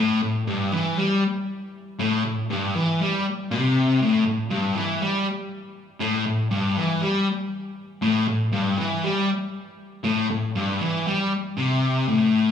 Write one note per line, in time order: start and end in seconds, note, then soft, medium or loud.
0.00 0.21 A2 loud
0.23 0.42 A2 medium
0.47 0.72 G2 loud
0.72 0.97 E3 loud
0.98 1.22 G3 loud
1.99 2.23 A2 loud
2.25 2.44 A2 medium
2.50 2.74 G2 loud
2.75 2.99 E3 loud
3.01 3.25 G3 loud
3.51 4.00 C3 loud
4.02 4.24 A2 medium
4.26 4.46 A2 medium
4.51 4.75 G2 loud
4.76 5.00 E3 medium
5.02 5.26 G3 loud
6.00 6.25 A2 loud
6.26 6.47 A2 medium
6.51 6.76 G2 loud
6.77 7.02 E3 loud
7.01 7.27 G3 loud
8.02 8.27 A2 loud
8.28 8.49 A2 medium
8.53 8.78 G2 loud
8.78 9.03 E3 loud
9.04 9.29 G3 loud
10.04 10.29 A2 loud
10.31 10.51 A2 medium
10.56 10.81 G2 loud
10.82 11.06 E3 loud
11.07 11.31 G3 loud
11.58 12.07 C3 loud
12.08 12.51 A2 loud